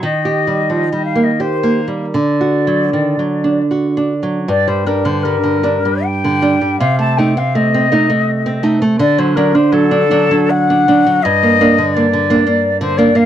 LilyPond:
<<
  \new Staff \with { instrumentName = "Flute" } { \time 3/4 \key g \minor \tempo 4 = 81 ees''4. f''16 ees''16 c''8. r16 | d''2 r4 | d''16 c''16 bes'16 c''16 bes'4 g''4 | f''16 a''16 g''16 f''16 ees''4. r8 |
d''16 c''16 bes'16 c''16 a'4 fis''4 | ees''4 d''4~ d''16 c''16 d''16 f''16 | }
  \new Staff \with { instrumentName = "Nylon-string guitar" } { \time 3/4 \key g \minor \tuplet 3/2 { ees8 g'8 g8 f8 g8 bes8 g'8 bes8 g8 } | \tuplet 3/2 { d8 fis'8 fis8 ees8 fis8 d'8 fis'8 d'8 fis8 } | g,16 g16 <g d'>16 d16 g16 d16 <g d'>16 g8 d16 <g d'>16 g16 | c16 a16 <a ees'>16 c'16 a16 c'16 <a ees'>16 a8 c'16 <a ees'>16 a16 |
d16 fis16 <fis d'>16 d'16 fis16 d'16 <fis d'>16 fis8 d'16 <fis d'>16 fis16 | g,16 bes16 <bes d'>16 d16 bes16 d16 <bes d'>16 bes8 d16 <bes d'>16 bes16 | }
>>